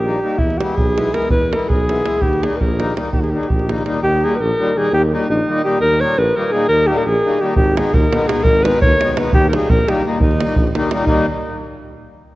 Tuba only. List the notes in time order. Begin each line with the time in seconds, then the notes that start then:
Already playing: A#1
0.38 E2
0.78 B1
1.29 E2
1.69 B1
2.22 D#2
2.60 A#1
3.13 D#2
3.51 A#1
4.03 D#2
4.41 A#1
4.92 D#2
5.30 A#1
5.80 D#2
6.18 A#1
6.69 D#2
7.06 A#1
7.57 G#1
7.94 D#2
8.45 G#1
8.82 D#2
9.32 D#2
9.69 A#1
10.20 D#2
10.57 A#1
11.06 D#2